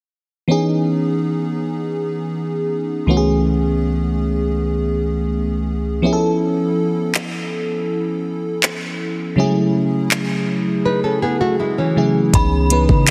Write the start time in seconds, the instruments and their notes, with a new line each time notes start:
0.48 fm electric piano E3 B3 C#4 D#4 G#4
3.06 fm electric piano C#2 E3 A3 B3 C#4
3.11 fm electric piano F#4
3.17 fm electric piano G#4
6.02 fm electric piano F3 B3 C#4 E4
6.06 fm electric piano G#4
6.13 fm electric piano A4
7.15 clap
8.63 clap
9.36 fm electric piano C#3 F#3 G#3 C#4 E4
9.40 fm electric piano G#4
9.44 fm electric piano A3
10.11 clap
10.85 nylon-string guitar D#4 B4
11.04 nylon-string guitar C#4 A4
11.22 nylon-string guitar B3 G#4
11.41 nylon-string guitar A3 F#4
11.60 nylon-string guitar G#3 E4
11.78 nylon-string guitar E3 C#4
11.96 fm electric piano C#3 F#3 A3 C#4 E4 G#4
12.34 808-style bass C#2, analog synth pad C#3 B3 D#4, fm electric piano E3 B3 C#4 D#4 G#4, synth bell B5, kick, closed hi-hat
12.70 fm electric piano E3 B3 C#4 D#4 B4, closed hi-hat
12.89 808-style bass C#3, kick
13.07 clap, closed hi-hat